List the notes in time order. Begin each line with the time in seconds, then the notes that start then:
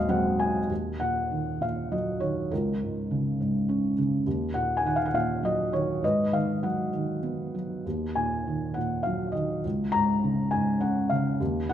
Already playing: D#1 D#2 F#3 G#3 C4 D#5 F5
0.09 F#3 G#3 C4 F#5
0.39 G#5
0.70 D#2
1.00 A#2 F#5
1.31 D#3
1.61 A#2 F5
1.92 F#3 D#5
2.20 D#3 C#5
2.51 C#2 F4 A#4
2.82 G#2
3.11 C#3
3.40 G#2
3.69 C#4
3.98 C#3
4.26 D#2
4.54 A#2 F#5
4.77 G#5
4.85 D#3 F#5
4.96 F5
5.05 F#5
5.14 A#2 F5
5.43 F#3 D#5
5.72 D#3 C#5
6.03 G#2 B4 D#5
6.32 D#3 F5
6.63 F#3 F#5
6.93 D#3
7.23 B3
7.54 F#3
7.86 D#2
8.15 A#2 G#5
8.47 D#3
8.74 A#2 F#5
9.03 F#3 F5
9.32 D#3 D#5
9.65 C#2
9.92 G#2 A#5
10.24 C#3
10.51 G#2 G#5
10.80 C#4 F#5
11.09 C#3 F5
11.40 D#2
11.69 A#2 F#5